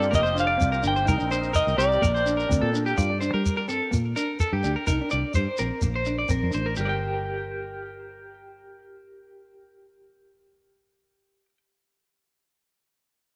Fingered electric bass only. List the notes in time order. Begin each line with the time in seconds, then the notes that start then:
Already playing: G2
0.13 F1
0.61 C2
0.84 G1
1.09 C2
1.21 A#1
1.55 C2
1.67 C2
1.78 C2
2.02 A#1
2.50 D2
2.62 A#2
2.98 G2
3.34 G3
3.69 G2
3.93 A#2
4.53 G2
4.64 D2
4.89 C2
5.13 C2
5.36 G2
5.60 A#1
5.83 A#1
6.30 A#1
6.43 F2
6.54 A1
6.78 G1